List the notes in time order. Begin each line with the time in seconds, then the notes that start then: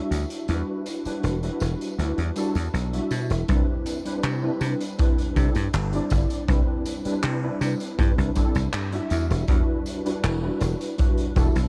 Already playing: G3 D4 E4 F#4 E5
0.11 D2, closed hi-hat, tambourine
0.30 closed hi-hat, tambourine
0.48 E2 G3 D4 E4 F#4 B4, closed hi-hat, tambourine
0.86 closed hi-hat, tambourine
1.05 G3 D4 E4 F#4 B4, muted slap bass stroke, closed hi-hat, tambourine
1.23 E1, closed hi-hat, tambourine
1.42 G3 D4 E4 F#4 B4, closed hi-hat
1.60 E1, closed hi-hat, tambourine
1.81 closed hi-hat, tambourine
1.98 D2 G3 D4 E4 F#4 B4, closed hi-hat, tambourine
2.18 E2, closed hi-hat
2.36 G3 D4 E4 F#4 A4, closed hi-hat, tambourine
2.55 E2, closed hi-hat, tambourine
2.73 B1, closed hi-hat, tambourine
2.93 G3 D4 E4 F#4 E5, closed hi-hat
3.11 B2, closed hi-hat, tambourine
3.30 E1, closed hi-hat, tambourine
3.48 C2 G3 C4 D4 E4 B4, kick, closed hi-hat, tambourine
3.86 closed hi-hat, tambourine
4.05 G3 C4 D4 E4 B4, closed hi-hat, tambourine
4.23 C3, clap, closed hi-hat, tambourine
4.42 G3 C4 D4 E4 B4
4.61 C3, closed hi-hat, tambourine
4.80 closed hi-hat, tambourine
4.98 G3 C4 D4 E4 B4, kick, closed hi-hat, tambourine
5.18 closed hi-hat
5.35 C3 G3 C4 D4 E4 A4, kick, closed hi-hat, tambourine
5.55 G2, closed hi-hat, tambourine
5.73 G1, clap, closed hi-hat, tambourine
5.92 G3 C4 D4 E4 D5, closed hi-hat
6.10 G1, kick, closed hi-hat, tambourine
6.30 closed hi-hat, tambourine
6.48 C2 G3 C4 D4 E4 B4, kick, closed hi-hat, tambourine
6.86 closed hi-hat, tambourine
7.05 G3 C4 D4 E4 B4, muted slap bass stroke, closed hi-hat, tambourine
7.23 C3, clap, closed hi-hat, tambourine
7.42 G3 C4 D4 E4 B4
7.61 C3, closed hi-hat, tambourine
7.80 closed hi-hat, tambourine
7.98 G2 G3 C4 D4 E4 B4, kick, closed hi-hat, tambourine
8.18 C2, closed hi-hat
8.35 G3 C4 D4 E4 A4, kick, closed hi-hat, tambourine
8.55 C2, closed hi-hat, tambourine
8.73 G2, clap, closed hi-hat, tambourine
8.92 G3 D4 E4 F#4 E5, closed hi-hat
9.10 E2, closed hi-hat, tambourine
9.30 E1, closed hi-hat, tambourine
9.48 E2 G3 D4 E4 F#4 B4, kick, closed hi-hat, tambourine
9.86 closed hi-hat, tambourine
10.05 G3 D4 E4 F#4 B4, closed hi-hat, tambourine
10.23 E1, clap, closed hi-hat, tambourine
10.42 G3 D4 E4 F#4 B4
10.61 E1, closed hi-hat, tambourine
10.81 closed hi-hat, tambourine
10.98 G3 D4 E4 F#4 B4, kick, closed hi-hat, tambourine
11.17 closed hi-hat
11.35 E1 G3 D4 E4 F#4 A4, kick, closed hi-hat, tambourine
11.55 B1, closed hi-hat, tambourine